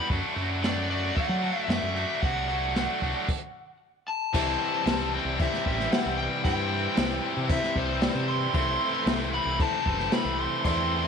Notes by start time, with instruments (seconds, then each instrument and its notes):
0.09 fingered electric bass F#2, overdriven electric guitar F#3 A3 D4 F#4, kick, open hi-hat
0.34 fingered electric bass F#2, overdriven electric guitar F#3 A3 D4 F#4, open hi-hat
0.61 overdriven electric guitar F#3 A3 D4 F#4, lead electric guitar D5, snare, open hi-hat
0.88 overdriven electric guitar F#3 A3 D4 F#4, lead electric guitar D5, open hi-hat
1.15 overdriven electric guitar F#3 A3 D4 F#4, lead electric guitar F#5, kick, open hi-hat
1.29 fingered electric bass F#3
1.42 overdriven electric guitar F#3 A3 D4 F#4, open hi-hat
1.59 lead electric guitar E5
1.68 fingered electric bass F#2, overdriven electric guitar F#3 A3 D4 F#4, lead electric guitar E5, snare, open hi-hat
1.83 fingered electric bass F#2
1.95 overdriven electric guitar F#3 A3 D4 F#4, open hi-hat
2.22 fingered electric bass C2, overdriven electric guitar F#3 A3 D4 F#4, lead electric guitar F#5, kick, open hi-hat
2.47 overdriven electric guitar F#3 A3 D4 F#4, open hi-hat
2.75 overdriven electric guitar F#3 A3 D4 F#4, snare, open hi-hat
3.02 fingered electric bass C2, overdriven electric guitar F#3 A3 D4 F#4, kick, open hi-hat
3.28 kick, crash
4.08 lead electric guitar A5
4.33 fingered electric bass C2, overdriven electric guitar C3 E3 G3 C4 E4, tonewheel organ G3 E4 C5, upright piano E4 G4 C5 E5, lead electric guitar A5, kick, crash
4.85 fingered electric bass C2, upright piano E4 G4 C5 E5, snare, crash
5.12 overdriven electric guitar C3 E3 G3 C4 E4, lead electric guitar G5
5.25 fingered electric bass C2
5.38 upright piano E4 G4 C5 E5, lead electric guitar E5, kick, crash
5.54 snare
5.66 fingered electric bass A1, lead electric guitar E5, kick
5.80 snare
5.92 upright piano E4 G4 C5 E5, lead electric guitar F#5, snare, crash
6.06 fingered electric bass C2
6.18 lead electric guitar G5
6.43 fingered electric bass G2, overdriven electric guitar C3 E3 G3 C4 E4, upright piano E4 G4 C5 E5, lead electric guitar G5, kick, crash
6.96 fingered electric bass C2, upright piano E4 G4 C5 E5, snare, crash
7.22 overdriven electric guitar C3 E3 G3 C4 E4
7.37 fingered electric bass C3
7.47 upright piano E4 G4 C5 E5, lead electric guitar E5, kick, crash
7.63 snare
7.76 fingered electric bass C2, lead electric guitar C5, kick
8.00 upright piano E4 G4 C5 D5, snare, crash
8.15 fingered electric bass C3
8.28 lead electric guitar C6
8.52 fingered electric bass C2, overdriven electric guitar C3 E3 A3 C4 E4, tonewheel organ A#3 F4 C#5, upright piano E4 A4 C5 E5, lead electric guitar C6, kick, crash
8.71 tonewheel organ A3 E4 C5
9.06 fingered electric bass C2, upright piano E4 A4 C5 E5, snare, crash
9.31 overdriven electric guitar C3 E3 A3 C4 E4, lead electric guitar B5
9.45 fingered electric bass C2
9.59 upright piano E4 A4 C5 E5, lead electric guitar A5, kick, crash
9.86 fingered electric bass F#1, lead electric guitar A5, kick
9.99 snare
10.11 upright piano E4 A4 C5 E5, lead electric guitar B5, snare, crash
10.25 fingered electric bass C2
10.40 lead electric guitar C6
10.64 fingered electric bass E2, overdriven electric guitar C3 E3 A3 C4 E4, upright piano E4 A4 C5 D5, lead electric guitar C6, kick, crash